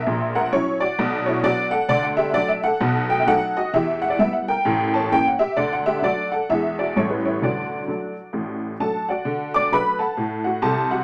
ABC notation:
X:1
M:4/4
L:1/16
Q:"Swing" 1/4=130
K:Bdor
V:1 name="Honky-tonk piano"
[_Be]2 [^Af]2 [Ec]2 [Fd]4 [Ec]2 [Fd]2 [=Af]2 | [K:D] d f [Ge]2 d e [Af]4 g e [Af]2 [F^d]2 | [Ge]2 f d e f [_Bg]4 [ca]2 g f [Ge]2 | d f [Ge]2 [Fd]2 [Af]2 [^Ge]2 [Fd]2 c B [Ec]2 |
[Fd]12 [Aa]2 [Fdf]2- | [Fdf]2 [dd']2 [Bb]2 [Afa]4 [Ff]2 [Aa]2 [Ff]2 |]
V:2 name="Honky-tonk piano" clef=bass
[^A,,,^A,,]4 [F,C]4 [B,,,B,,]4 [F,B,D]4 | [K:D] [D,,D,]4 [F,A,D]4 [B,,,B,,]4 [F,A,^D]4 | [E,,E,]4 [G,B,E]4 [A,,,A,,]4 [E,_B,C]4 | [D,,D,]4 [F,A,D]4 [E,,E,^G,D]4 [A,,,A,,=G,A,E]4 |
[D,,D,]4 [F,A,D]4 [A,,,A,,]4 [F,A,D]4 | D,4 [F,A,D]4 A,,4 [=C,,=C,]4 |]